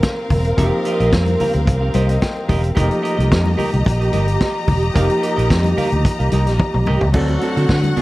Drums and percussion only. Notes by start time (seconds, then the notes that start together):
0.03 kick, snare, closed hi-hat, muted conga
0.30 kick, open hi-hat, high conga, low conga
0.45 closed hi-hat
0.58 kick, closed hi-hat
0.85 closed hi-hat
1.00 closed hi-hat
1.12 kick, snare, closed hi-hat, muted conga
1.27 closed hi-hat, high conga
1.40 open hi-hat, high conga, low conga
1.54 closed hi-hat, low conga
1.67 kick, closed hi-hat
1.94 closed hi-hat, high conga
2.09 closed hi-hat
2.21 kick, snare, closed hi-hat, muted conga
2.37 muted conga
2.49 kick, open hi-hat, high conga, low conga
2.64 closed hi-hat
2.75 kick, closed hi-hat, muted conga
2.91 closed hi-hat
3.05 closed hi-hat
3.20 closed hi-hat
3.31 kick, snare, closed hi-hat, muted conga
3.46 muted conga, high conga
3.59 open hi-hat, high conga, low conga
3.73 closed hi-hat, low conga
3.85 kick, closed hi-hat, muted conga
4.01 closed hi-hat
4.13 closed hi-hat, high conga
4.28 closed hi-hat
4.40 kick, snare, closed hi-hat
4.67 kick, open hi-hat, high conga, low conga
4.82 closed hi-hat
4.96 kick, closed hi-hat
5.10 closed hi-hat
5.23 closed hi-hat
5.39 closed hi-hat
5.50 kick, snare, closed hi-hat, muted conga
5.64 closed hi-hat, high conga
5.78 open hi-hat, high conga, low conga
5.92 closed hi-hat, low conga
6.04 kick, closed hi-hat, muted conga
6.20 closed hi-hat
6.32 closed hi-hat, high conga
6.47 snare, closed hi-hat
6.59 kick, high tom, muted conga
6.74 mid tom
6.86 mid tom, high conga, low conga
7.01 floor tom
7.13 kick, crash, muted conga
7.28 closed hi-hat, muted conga
7.41 closed hi-hat
7.57 closed hi-hat
7.69 kick, snare, muted conga
7.84 closed hi-hat, high conga
7.97 open hi-hat, high conga, low conga